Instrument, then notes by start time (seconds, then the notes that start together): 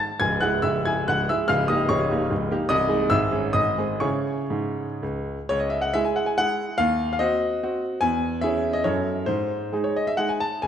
grand piano
0.00 A5 A6
0.20 C#1 C#2 G#5 G#6
0.41 G#3 E4 G#4 F#5 F#6
0.62 C#1 C#2 E5 E6
0.85 G#3 E4 G#4 G#5 G#6
1.08 C#1 C#2 F#5 F#6
1.29 G#3 E4 G#4 E5 E6
1.48 C#1 C#2 F5 F6
1.68 A#3 D#4 G4 D#5 D#6
1.89 C#1 C#2 C#5 C#6
2.11 A#3 D#4 G4
2.31 C#1 C#2
2.51 A#3 D#4 G4
2.69 C1 C2 D#5 D#6
2.89 G#3 D#4 G#4
3.10 G#1 G#2 E5 E6
3.32 G#3 C#4 G#4
3.53 G#1 G#2 D#5 D#6
3.78 G#3 C4 G#4
4.00 C#3 E4 G#4 C#5 C#6
4.50 G#2
5.03 C#2
5.49 C#2 C#5
5.60 D#5
5.70 E5
5.81 F#5
5.94 G#3 E4 G#4 E5
6.05 G#5
6.16 F#5
6.26 G#5
6.38 G#3 E4 G#4 F#5
6.78 D#2 F5
7.13 F5
7.19 C4 F#4 D#5
7.63 C4 F#4
8.01 E2 G#5
8.41 C#4 E4 G#4 E5
8.73 D#5
8.84 F#2 C#4 E4 A4 C#5
9.26 G#2 C5
9.72 G#3 D#4 G#4
9.84 C#5
9.96 D#5
10.07 E5
10.17 G#3 D#4 G#4 F#5
10.29 G#5
10.40 A5
10.62 C#2 G#5